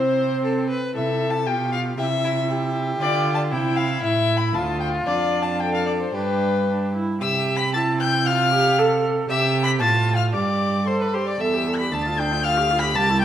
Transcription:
0.00 0.68 C3 medium
0.00 0.68 C4 medium
0.00 0.44 C5 medium
0.00 0.68 C5 loud
0.45 0.69 A4 medium
0.70 0.95 B4 medium
0.95 1.48 C3 medium
0.95 1.43 E4 medium
0.95 1.48 A4 medium
0.95 1.32 E5 loud
1.30 1.48 A5 loud
1.46 1.97 B2 medium
1.46 1.95 F4 medium
1.46 1.97 G4 medium
1.46 1.71 G5 medium
1.72 1.80 F5 loud
1.98 2.98 C3 medium
1.98 2.97 E4 medium
1.98 2.06 G4 medium
1.98 2.73 E5 loud
2.24 2.32 E4 medium
2.50 3.53 G4 medium
3.00 3.53 D3 medium
3.00 3.48 F4 medium
3.00 3.32 D5 loud
3.35 3.41 A5 medium
3.51 4.03 C3 medium
3.51 4.56 E4 medium
3.51 4.02 E4 medium
3.51 3.78 G5 loud
3.77 4.02 F5 loud
4.02 4.56 A2 medium
4.02 4.57 E4 medium
4.02 4.39 E5 loud
4.37 4.56 B5 loud
4.54 5.06 D2 medium
4.54 5.62 F4 medium
4.54 5.06 F4 medium
4.54 4.79 A5 medium
4.80 4.88 G5 loud
5.06 6.10 F2 medium
5.06 6.09 D4 medium
5.06 5.44 D5 loud
5.42 5.61 A5 loud
5.60 6.14 A4 medium
5.60 5.73 G5 loud
5.74 5.86 F5 medium
5.86 5.92 D5 loud
6.01 6.16 C5 medium
6.14 6.99 G2 medium
6.14 6.61 D4 medium
6.14 6.93 G4 medium
6.14 6.95 B4 loud
6.68 6.93 D4 medium
6.94 7.21 E4 medium
7.21 9.25 C3 medium
7.21 7.76 G4 medium
7.21 7.58 E5 medium
7.21 7.54 E6 loud
7.57 7.74 B5 loud
7.57 7.64 B6 loud
7.74 8.28 E4 medium
7.74 8.00 A5 medium
7.74 7.82 A6 medium
8.00 8.28 G5 loud
8.00 8.27 G6 loud
8.26 8.52 F4 loud
8.26 9.04 F5 medium
8.26 9.03 F6 loud
8.52 8.80 G4 loud
8.78 9.29 A4 medium
9.29 9.82 C3 medium
9.29 9.82 G4 medium
9.29 9.61 E5 loud
9.29 9.62 E6 loud
9.63 9.70 B5 loud
9.63 9.71 B6 loud
9.80 10.34 A2 medium
9.80 10.35 F4 medium
9.80 10.17 A5 medium
9.80 10.15 A6 loud
10.15 10.32 F5 medium
10.15 10.23 F6 loud
10.33 11.19 G2 medium
10.33 10.81 G4 medium
10.33 10.89 D5 medium
10.33 10.88 D6 loud
10.86 11.15 A4 medium
10.86 11.02 C5 medium
10.86 11.00 C6 medium
11.01 11.15 B4 medium
11.01 11.15 B5 medium
11.14 11.39 G4 medium
11.14 11.26 C5 medium
11.14 11.29 C6 medium
11.27 11.42 D5 medium
11.27 11.39 D6 medium
11.39 11.93 E2 medium
11.39 11.55 A4 medium
11.39 11.75 E5 medium
11.39 11.77 E6 loud
11.53 11.68 G4 medium
11.67 11.82 A4 medium
11.75 11.95 B5 medium
11.75 11.93 B6 loud
11.80 11.93 G4 medium
11.92 12.96 D2 medium
11.92 12.08 D4 medium
11.92 12.20 A5 medium
11.92 12.20 A6 loud
12.06 12.20 F4 medium
12.18 12.33 D4 medium
12.18 12.46 G5 medium
12.18 12.45 G6 loud
12.31 12.44 F4 medium
12.43 12.58 F4 medium
12.43 12.80 F5 loud
12.43 12.80 F6 loud
12.57 12.72 G4 medium
12.70 12.84 F4 medium
12.79 12.95 G4 medium
12.79 12.97 B5 loud
12.79 12.97 B6 loud
12.95 13.25 C2 medium
12.95 13.10 G4 medium
12.95 13.20 A5 loud
12.95 13.21 A6 loud
13.09 13.23 E4 medium
13.21 13.25 G4 loud
13.21 13.25 G5 loud
13.21 13.25 G6 loud

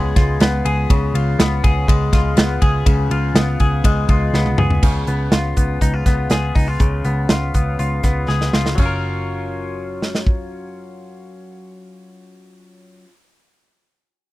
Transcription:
0.00 0.12 C#2 loud
0.00 0.89 C#3 medium
0.00 1.88 G#3 medium
0.00 0.41 B3 medium
0.00 0.16 F4 medium
0.00 0.65 G#4 medium
0.16 0.36 C#2 loud
0.16 1.14 F4 medium
0.16 kick loud
0.16 snare soft
0.16 ride medium
0.40 0.61 C#2 loud
0.40 1.39 B3 medium
0.40 snare loud
0.40 ride medium
0.65 0.85 C#2 loud
0.65 1.63 G#4 medium
0.65 ride medium
0.90 1.10 C#2 loud
0.90 2.85 C#3 medium
0.90 kick loud
0.90 ride medium
1.14 1.34 C#2 medium
1.14 2.13 F4 medium
1.14 ride medium
1.39 1.59 C#2 loud
1.39 2.37 B3 medium
1.39 snare loud
1.39 ride medium
1.64 1.84 C#2 loud
1.64 2.61 G#4 medium
1.64 kick loud
1.64 ride medium
1.88 2.08 C#2 loud
1.88 3.85 G#3 medium
1.88 kick loud
1.88 ride medium
2.13 2.33 C#2 loud
2.13 3.11 F4 medium
2.13 kick medium
2.13 snare soft
2.13 ride medium
2.37 2.57 C#2 loud
2.37 3.35 B3 medium
2.37 snare loud
2.37 ride medium
2.62 2.82 C#2 loud
2.62 3.60 G#4 medium
2.62 kick loud
2.62 ride medium
2.86 3.06 C#2 loud
2.86 4.82 C#3 medium
2.86 kick loud
2.86 ride medium
3.10 3.31 C#2 medium
3.10 4.09 F4 medium
3.10 ride medium
3.35 3.55 C#2 medium
3.35 4.34 B3 medium
3.35 snare loud
3.35 ride medium
3.60 3.80 C#2 medium
3.60 4.58 G#4 medium
3.60 kick loud
3.60 ride medium
3.84 4.04 C#2 loud
3.84 7.35 G#3 medium
3.84 kick medium
3.84 ride medium
4.09 4.29 C#2 loud
4.09 5.11 F4 medium
4.09 kick loud
4.09 ride medium
4.33 4.54 C#2 loud
4.33 5.08 B3 medium
4.33 snare medium
4.46 high tom medium
4.58 4.78 C#2 loud
4.58 6.31 G#4 medium
4.58 mid tom loud
4.70 floor tom loud
4.83 5.03 C#2 medium
4.83 6.79 C#3 medium
4.83 kick loud
4.83 crash medium
5.07 5.28 C#2 medium
5.07 5.56 B3 medium
5.07 closed hi-hat medium
5.32 5.52 C#2 loud
5.32 5.81 F4 medium
5.32 snare loud
5.32 closed hi-hat medium
5.57 5.77 C#2 medium
5.57 6.05 B3 medium
5.57 kick medium
5.57 closed hi-hat medium
5.81 6.01 C#2 medium
5.81 5.94 D#4 medium
5.81 kick medium
5.81 closed hi-hat medium
5.94 6.55 F4 soft
6.06 6.26 C#2 medium
6.06 7.04 B3 medium
6.06 kick medium
6.06 snare soft
6.06 closed hi-hat medium
6.30 6.51 C#2 loud
6.30 8.27 G#4 medium
6.30 snare loud
6.30 closed hi-hat medium
6.55 6.76 C#2 medium
6.55 6.68 D#4 soft
6.55 kick loud
6.55 open hi-hat medium
6.68 7.29 F4 soft
6.80 7.00 C#2 medium
6.80 8.78 C#3 medium
6.80 kick loud
6.80 closed hi-hat medium
7.05 7.25 C#2 medium
7.05 7.53 B3 medium
7.05 closed hi-hat medium
7.29 7.50 C#2 medium
7.29 7.79 F4 medium
7.29 snare loud
7.29 closed hi-hat medium
7.54 7.75 C#2 medium
7.54 8.03 B3 medium
7.54 kick medium
7.54 closed hi-hat medium
7.79 7.99 C#2 medium
7.79 8.53 F4 medium
7.79 closed hi-hat medium
8.03 8.24 C#2 medium
8.03 8.79 B3 soft
8.03 kick medium
8.03 snare soft
8.03 closed hi-hat medium
8.28 8.49 C#2 medium
8.28 8.83 G#4 medium
8.28 snare soft
8.41 snare medium
8.53 8.73 C#2 medium
8.53 8.82 F4 soft
8.53 snare medium
8.66 snare medium
8.75 13.03 F#1 medium
8.75 13.05 F#3 medium
8.75 kick medium
8.75 crash medium
8.79 13.09 C#4 medium
8.79 13.12 F4 medium
8.86 13.15 A#4 medium
10.02 snare medium
10.15 snare medium
10.27 kick medium

